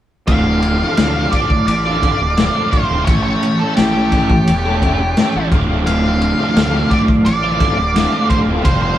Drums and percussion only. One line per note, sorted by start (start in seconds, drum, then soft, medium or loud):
0.27 kick loud
0.27 ride medium
0.62 ride medium
0.97 snare loud
0.97 ride medium
1.33 kick medium
1.33 ride medium
1.50 kick medium
1.68 ride medium
2.03 kick medium
2.03 ride medium
2.37 snare medium
2.37 ride medium
2.73 kick medium
2.73 ride medium
3.07 kick loud
3.07 ride medium
3.43 ride medium
3.77 snare loud
3.77 ride medium
4.12 kick medium
4.12 ride medium
4.30 kick medium
4.48 ride medium
4.82 kick medium
4.82 ride soft
5.17 snare loud
5.17 ride medium
5.52 kick medium
5.52 ride medium
5.87 ride medium
6.21 ride soft
6.57 snare loud
6.57 ride medium
6.91 kick medium
6.91 ride medium
7.08 kick medium
7.26 ride medium
7.60 kick medium
7.60 ride medium
7.96 snare medium
7.96 ride medium
8.30 kick medium
8.30 ride medium
8.65 kick loud
8.65 ride medium